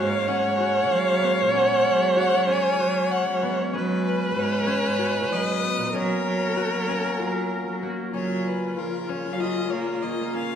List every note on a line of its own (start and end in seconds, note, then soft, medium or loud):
0.00 0.24 G#2 loud
0.00 5.77 C#3 medium
0.00 5.77 G#3 medium
0.00 1.28 A#3 medium
0.00 0.28 C#4 medium
0.00 5.77 C#4 medium
0.00 0.60 F#4 medium
0.00 3.76 C#5 loud
0.00 0.30 F5 medium
0.28 1.53 C#4 medium
0.28 0.93 F#5 medium
0.44 0.93 G#2 medium
0.60 2.16 F#4 medium
0.91 1.19 F#3 medium
0.91 1.54 F5 medium
1.22 3.42 B3 medium
1.39 1.80 A#2 medium
1.54 2.47 C#4 medium
1.54 2.14 F#5 medium
1.86 2.27 F#3 medium
2.17 2.79 F#4 medium
2.17 2.47 F#5 medium
2.33 2.60 F#3 medium
2.47 3.73 C#4 medium
2.47 3.13 G#5 loud
2.79 3.21 F#3 medium
2.79 4.36 F#4 medium
3.12 3.58 F#5 medium
3.27 3.54 F#3 medium
3.42 5.62 B3 medium
3.73 4.29 F#3 loud
3.73 4.67 C#4 medium
3.73 5.92 B4 loud
4.06 4.40 B4 medium
4.36 4.64 G#2 loud
4.36 4.98 F#4 medium
4.36 5.34 C#5 loud
4.67 5.94 C#4 medium
4.84 5.33 G#2 medium
4.99 6.56 F#4 medium
5.31 5.58 F#3 medium
5.31 5.97 D#5 loud
5.63 7.88 B3 medium
5.79 5.92 A#2 medium
5.93 8.12 F#3 medium
5.93 6.21 F#3 loud
5.93 8.12 A#3 medium
5.93 6.88 C#4 medium
5.93 7.78 A#4 loud
5.93 8.12 A#4 medium
5.93 7.83 C#5 loud
6.26 6.67 F#3 medium
6.56 7.25 F#4 medium
6.73 7.00 F#3 medium
6.88 8.13 C#4 medium
7.19 7.61 F#3 medium
7.19 8.77 F4 medium
7.67 7.94 F#3 medium
7.82 10.03 A#3 medium
7.82 8.12 F#4 medium
8.13 10.55 A#2 medium
8.13 10.55 C#3 medium
8.13 8.69 F#3 medium
8.13 10.55 C#4 medium
8.13 9.09 C#4 medium
8.13 10.55 F4 medium
8.13 8.49 C#5 medium
8.47 8.80 B4 medium
8.77 9.18 F3 medium
8.77 9.40 F4 medium
8.77 9.11 A#4 medium
9.09 10.34 C#4 medium
9.09 9.35 C#5 medium
9.24 9.65 F#3 medium
9.33 9.42 F5 medium
9.40 10.55 F4 medium
9.40 9.72 D#5 medium
9.71 9.98 A#3 medium
9.71 10.04 C#5 medium
10.03 10.55 A#3 medium
10.03 10.34 D#5 medium
10.19 10.55 A#3 medium
10.35 10.55 C#4 medium
10.35 10.55 F5 medium